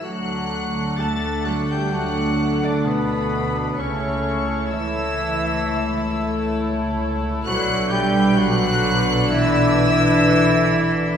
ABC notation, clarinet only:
X:1
M:4/4
L:1/16
Q:1/4=65
K:D
V:1 name="Clarinet"
F4 A2 F G F3 D B,4 | C4 E8 z4 | F2 G2 F4 E8 |]